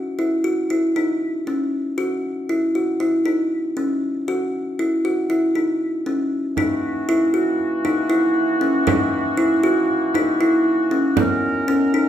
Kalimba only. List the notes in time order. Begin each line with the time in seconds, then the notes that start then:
0.19 E4
0.44 F#4
0.70 E4
0.96 D#4
1.47 C#4
1.98 F#4
2.49 E4
2.75 F#4
3.00 E4
3.25 D#4
3.77 C#4
4.28 F#4
4.79 E4
5.05 F#4
5.30 E4
5.55 D#4
6.06 C#4
6.58 D#4
7.09 E4
7.34 F#4
7.85 D#4
8.10 E4
8.61 C#4
8.87 D#4
9.37 E4
9.63 F#4
10.15 D#4
10.41 E4
10.91 C#4
11.17 B3
11.68 C#4
11.94 D#4